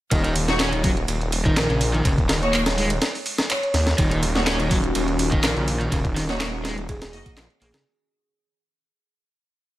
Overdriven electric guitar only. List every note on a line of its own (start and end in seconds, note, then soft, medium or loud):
0.12 0.23 D#3 medium
0.24 0.34 D#3 medium
0.60 0.70 C#4 medium
0.72 0.83 D#3 medium
0.84 0.90 F#3 medium
1.45 1.68 D#3 medium
1.69 1.79 C#3 medium
1.94 2.03 D#3 medium
2.05 2.11 C#3 loud
2.29 2.36 D#3 medium
2.53 2.60 A#3 medium
2.78 2.88 G#3 medium
3.98 4.10 D#3 medium
4.11 4.20 D#3 medium
4.47 4.57 C#4 medium
4.59 4.70 D#3 medium
4.70 4.77 F#3 medium
5.31 5.55 D#3 medium
5.56 5.66 C#3 medium
5.80 5.90 D#3 medium
5.91 5.98 C#3 loud
6.16 6.22 D#3 medium
6.40 6.47 A#3 medium
6.64 6.75 G#3 medium
7.61 7.68 A#3 medium
7.74 7.80 C#3 loud